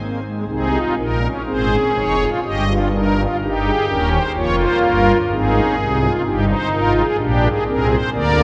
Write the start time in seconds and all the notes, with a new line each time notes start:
0.00 A#3
0.23 G#3
0.47 C2 C3 C4 D#4 G#4
0.73 F4
0.97 A#1 A#2 D#4 A#4
1.22 C#4
1.45 G#1 G#2 C4 G#4 C5
1.71 C#4
1.95 F1 F2 D#4 C#5
2.19 F4
2.43 G1 G2 G4 D#5
2.68 F4
2.93 D#4 A#4
3.17 F4
3.41 G1 G2 D#4 G4
3.65 G#4
3.88 D#1 D#2 C#4 A#4
4.12 C5
4.36 F1 F2 A#3 F4 C#5
4.58 C5
4.83 G1 G2 A#4
5.31 G#1 G#2 C4 D#4 G#4
5.54 C#4
5.77 C2 C3 D#4
6.01 F4
6.24 G1 G2 D#4 G4
6.48 C5
6.72 G#1 G#2 F4 A#4
6.96 G#4
7.18 A#1 A#2 D4 G4
7.43 G#4
7.66 C2 C3 C4 G#4 A#4
7.89 C5
8.13 D2 D3 A#3 A#4 D5